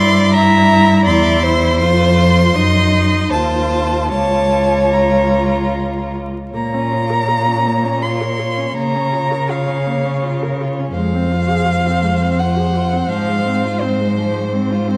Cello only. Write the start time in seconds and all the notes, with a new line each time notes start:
Already playing: G2
1.07 E2
1.80 F2
2.55 F#2
3.32 D#2
4.11 C#2
6.54 A#2
8.77 C#3
10.95 F2
13.11 G#2